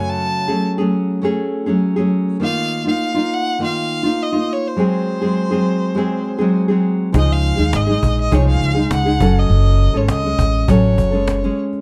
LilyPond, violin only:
\new Staff \with { instrumentName = "Violin" } { \time 4/4 \key des \major \tempo 4 = 102 a''4 r2. | f''8. f''8. ges''8 f''4 ees''8 des''16 c''16~ | c''2. r4 | ees''16 f''8. ees''8. ees''16 des''16 f''8. ges''8. ees''16~ |
ees''8. des''16 ees''4 des''4. r8 | }